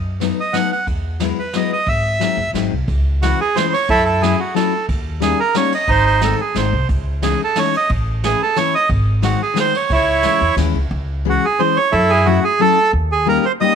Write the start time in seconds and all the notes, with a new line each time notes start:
Already playing: F#2
0.20 F#3 A3 B3 D#4, snare, ride
0.40 D#5
0.53 F#3 A3 B3 D#4 F#5, snare, ride
0.72 F#5
0.87 E2, kick, ride
1.20 F#3 G#3 B3 E4, snare, ride
1.39 B4
1.53 F#3 G#3 B3 E4 D#5, snare, ride
1.73 D#5
1.86 G#1 E5, kick, ride
2.19 F#3 G#3 C4 D#4, snare, ride
2.37 F#1
2.53 G#1 F#3 G#3 C4 D#4, snare, ride
2.71 C2
2.88 C#2, kick, ride
3.22 E3 G#3 C#4 E4 F#4, snare, ride
3.41 G#4
3.56 E3 G#3 C#4 E4 C5, snare, ride
3.73 C#5, ride
3.89 F#2 E4 A4, kick, ride
4.05 A4
4.22 F#3 A3 C#4 E4 G#4, snare, ride
4.40 F#4
4.54 F#3 A3 C#4 E4 A4, snare, ride
4.89 D#2, kick, ride
5.20 G3 A#3 C#4 D#4 G#4, snare, ride
5.40 A#4
5.54 G3 A#3 C#4 D#4 C#5, snare, ride
5.72 D#5, ride
5.87 G#1 D#4 C5, kick, ride
6.07 C5
6.21 D#3 G#3 C4 D#4 A4, snare, ride
6.41 G#4
6.54 G#1 D#3 G#3 C4 D#4 C5, snare, ride
6.73 C2
6.89 C#2, kick, ride
7.22 E3 G#3 C#4 D#4 G#4, snare, ride
7.44 A4
7.56 E3 G#3 C#4 D#4 C#5, snare, ride
7.73 D#5, ride
7.89 A1, kick, ride
8.24 E3 A3 C#4 E4 G#4, snare, ride
8.42 A4
8.56 E3 A3 C#4 E4 C#5, snare, ride
8.75 D#5
8.89 G#1, kick, ride
9.22 D#3 G#3 C4 D#4 F#4, snare, ride
9.42 G#4
9.54 D#3 G#3 C4 D#4, snare, ride
9.60 C5
9.74 C#5, ride
9.90 C#2 E4, kick, ride
9.94 C#5
10.23 E3 G#3 C#4 E4, snare, ride
10.41 E2
10.56 D#2 E3 G#3 C#4 E4, snare, ride
10.74 C#2
10.91 C#2
11.25 E3 G#3 C#4 E4 G#4
11.29 F#4
11.45 G#4
11.59 E3 G#3 C#4 E4 G#4 C5
11.77 C#5
11.92 F#2 E4 A4
12.10 G#4
12.26 F#3 A3 C#4 E4 F#4
12.44 G#4
12.59 F#3 A3 C#4 E4 F#4 A4
12.93 D#2
13.12 G#4
13.26 G3 A#3 C#4 D#4 G4 A#4
13.45 C5
13.60 G3 A#3 C#4 D#4 G4 D#5